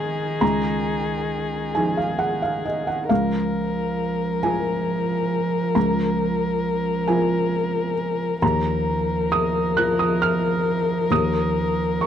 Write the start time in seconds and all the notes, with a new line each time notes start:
Already playing: D#3 F3 D#4 G#4 G#5
0.41 C#2 A#5
1.75 F3 D#4 G#4 G#5
1.97 F5
2.19 F#5
2.42 F5
2.65 D#5
2.87 F#5
3.09 C#2 F3 A#4 F5
4.43 F3 F4 A#4 G#5
5.75 C#2 A#5
7.08 F3 F4 A#4 G#5
8.42 D#2 F3 A#4 A#5
9.32 D#6
9.77 F3 F4 A#4 F#6
9.99 D#6
10.22 F6
11.11 D#2 D#6
12.01 C#6